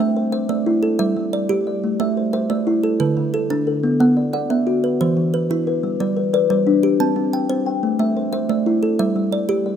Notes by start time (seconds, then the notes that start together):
Already playing: A3
0.00 A3 E5
0.16 C5
0.32 C5 E5
0.49 A3 D5
0.66 E4
0.83 A4
0.99 G3 E5
1.17 G3
1.33 D5
1.49 G3 G4
1.67 D5
1.84 A3
2.00 A3 E5
2.17 C5
2.33 C5 E5
2.50 A3 D5
2.67 E4
2.84 A4
3.00 D3 B4
3.17 D3
3.34 A4
3.50 D3 D4
3.67 A4
3.83 B3
4.00 B3 F#5
4.17 D5
4.33 D5 F#5
4.50 B3 E5
4.67 F#4
4.84 B4
5.01 E3 C5
5.17 E3
5.34 B4
5.50 E3 E4
5.67 B4
5.83 G3
6.00 G3 D5
6.17 B4
6.34 B4 D5
6.50 G3 C5
6.67 D4
6.83 G4
7.00 C4 A5
7.16 C4
7.33 G5
7.50 C4 C5
7.66 G5
7.83 A3
7.99 A3 E5
8.17 C5
8.33 C5 E5
8.49 A3 D5
8.66 E4
8.83 A4
8.99 G3 E5
9.16 G3
9.32 D5
9.49 G3 G4
9.66 D5